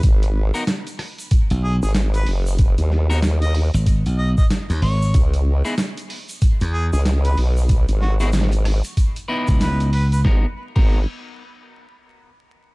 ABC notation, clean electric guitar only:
X:1
M:4/4
L:1/16
Q:"Swing 16ths" 1/4=94
K:G#m
V:1 name="Clean electric guitar"
z3 [B,DFA] z12 | z3 [B,DFA] z12 | z3 [B,DEG] z12 | z3 [B,DEG] z6 [B,DEB]4 z2 |
[B,DFA] z2 [B,DFA]2 z8 z3 |]